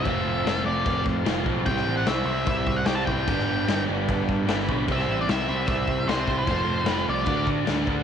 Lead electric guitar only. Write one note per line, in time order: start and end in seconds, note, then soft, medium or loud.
0.00 0.65 E5 medium
0.66 1.03 D5 medium
1.66 1.97 G5 medium
1.97 2.07 F#5 medium
2.07 2.46 E5 medium
2.47 2.78 E5 loud
2.76 2.86 F#5 medium
2.86 2.95 G5 loud
2.95 3.06 A5 loud
3.06 3.83 G5 medium
4.92 5.18 E5 loud
5.21 5.29 D5 medium
5.29 5.66 E5 loud
5.67 6.09 E5 loud
6.08 6.38 C5 medium
6.39 6.85 C5 medium
6.85 7.05 B4 medium
7.10 7.46 D5 medium